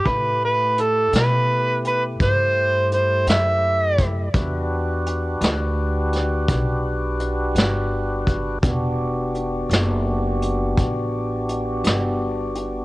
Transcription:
<<
  \new Staff \with { instrumentName = "Harmonica" } { \time 12/8 \key e \minor \tempo 4. = 56 b'8 b'8 a'8 b'4 b'8 c''4 c''8 e''4 r8 | r1. | r1. | }
  \new Staff \with { instrumentName = "Tonewheel organ" } { \time 12/8 \key e \minor <a e' g'>1. | <d' fis' g' b'>1. | <b d' fis' g'>1. | }
  \new Staff \with { instrumentName = "Upright bass" } { \clef bass \time 12/8 \key e \minor a,4. b,4. g,4. fis,4. | e,4. d,4. b,,4. g,,4. | e,,4. fis,,4. a,,4. g,,4. | }
  \new DrumStaff \with { instrumentName = "Drums" } \drummode { \time 12/8 <hh bd>4 hh8 <hh sn>4 hh8 <hh bd>4 hh8 <hh sn>4 <hh bd>8 | <hh bd>4 hh8 <hh sn>4 <hh sn>8 <hh bd>4 hh8 <hh sn>4 <hh bd>8 | <hh bd>4 hh8 <hh sn>4 hh8 <hh bd>4 hh8 <hh sn>4 hh8 | }
>>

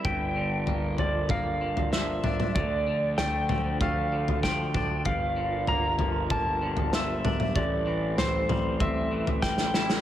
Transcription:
<<
  \new Staff \with { instrumentName = "Electric slide guitar" } { \time 4/4 \key g \dorian \tempo 4 = 96 g''4. d''8 f''4 e''4 | d''4 g''4 f''4 g''4 | f''4 bes''4 a''4 e''4 | d''4 c''4 e''4 g''4 | }
  \new Staff \with { instrumentName = "Analog synth pad" } { \time 4/4 \key g \dorian << { <f' bes'>1 | <d' a'>1 | <f' bes'>1 | <c' a'>1 | } \\ { g1 | f1 | g1~ | g1 | } >> }
  \new Staff \with { instrumentName = "Clean electric guitar" } { \clef bass \time 4/4 \key g \dorian g,8 d8 bes8 f8 bes8 d8 f8 d'8 | d8 d8 a8 f8 a8 d8 f8 d'8 | g,8 d8 bes8 f8 bes8 d8 f8 d'8 | a,8 e8 c'8 g8 c'8 e8 g8 e'8 | }
  \new Staff \with { instrumentName = "Picked electric bass" } { \clef bass \time 4/4 \key g \dorian g,,1 | d,1 | g,,1 | a,,1 | }
  \new DrumStaff \with { instrumentName = "Drums" } \drummode { \time 4/4 <bd tomfh>4 tomfh8 tomfh8 <bd tomfh toml>8. tomfh16 sn8 <tomfh toml>16 toml16 | <bd tomfh>4 <sn tomfh>8 <tomfh toml>8 <bd tomfh>8. tomfh16 <bd sn>8 <bd tomfh toml>8 | <bd tomfh>4 tomfh8 tomfh8 <bd tomfh toml>8. tomfh16 sn8 <tomfh toml>16 toml16 | <bd tomfh>4 <sn tomfh>8 <tomfh toml>8 <bd tomfh>8. tomfh16 <bd sn>16 sn16 sn16 sn16 | }
>>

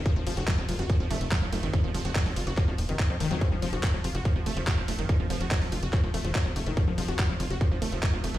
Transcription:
<<
  \new Staff \with { instrumentName = "Synth arpeggio sound" } { \clef bass \time 4/4 \tempo 4 = 143 f16 f16 f16 ges'16 ges16 f16 f'16 ges'16 f16 f16 a16 r16 ges16 f16 a16 ees16 | f16 f16 f16 ges'16 ges16 f16 f'16 ges'16 f16 f16 r16 ees16 ees16 f16 ees16 ges16 | f16 f16 f16 ges'16 ges16 f16 f'16 ges'16 f16 f16 a16 f16 ges16 f16 a16 ees16 | f16 f16 f16 ges'16 ges16 f16 f'16 ges'16 f16 f16 a16 f16 ges16 f16 a16 ees16 |
f16 f16 f16 ges'16 ges16 f16 f'16 ges'16 f16 f16 a16 f16 ges16 f16 a16 ees16 | }
  \new Staff \with { instrumentName = "Analog synth bass" } { \clef bass \time 4/4 r16 f,,16 f,,16 f,,16 r16 f,,16 f,,16 f,,16 r16 f,,16 f,,16 f,,16 r16 f,,16 f,,16 ges,,16 | r16 f,,16 f,,16 f,,16 r16 f,,16 f,,16 f,,16 r16 f,,16 ees,,16 f,,16 r16 f,16 f,,16 f,16 | r16 f,,16 f,,16 f,,16 r16 f,,16 f,,16 f,,16 r16 f,,16 f,,16 f,,16 r16 f,,16 f,,16 ges,,16 | r16 f,,16 f,,16 f,,16 r16 f,,16 f,,16 f,,16 r16 f,,16 f,,16 ees,,16 r16 f,,16 f,,16 f,,16 |
r16 f,,16 f,,16 f,,16 r16 f,,16 f,,16 f,,16 r16 f,,16 f,,16 f,,16 r16 f,,16 f,,16 ges,,16 | }
  \new DrumStaff \with { instrumentName = "Drums" } \drummode { \time 4/4 <hh bd cymr>8 <hho cymr>16 hh16 <hc hh bd cymr>8 <hho cymr>16 hh16 <hh bd cymr>8 <hho cymr>16 hh16 <hc hh bd cymr>8 <hho cymr>16 hh16 | <hh bd cymr>8 <hho cymr>16 hh16 <hc hh bd cymr>16 hho16 <hho cymr>16 hh16 <hc hh bd cymr>8 <hho cymr>16 hh16 <hc hh bd>8 <hho cymr>16 hh16 | <hh bd cymr>8 <hho cymr>16 hh16 <hc hh bd>8 <hho cymr>16 hh16 <hh bd cymr>8 <hho cymr>16 hh16 <hc hh bd cymr>8 <hho cymr>16 hh16 | <hh bd cymr>8 <hho cymr>16 hh16 <hc hh bd cymr>16 hho16 <hho cymr>16 hh16 <hc hh bd cymr>8 <hho cymr>16 hh16 <hc hh bd cymr>8 <hho cymr>16 hh16 |
<hh bd cymr>8 <hho cymr>16 hh16 <hc hh bd cymr>8 <hho cymr>16 hh16 <hh bd cymr>8 <hho cymr>16 hh16 <hc hh bd cymr>8 <hho cymr>16 hh16 | }
>>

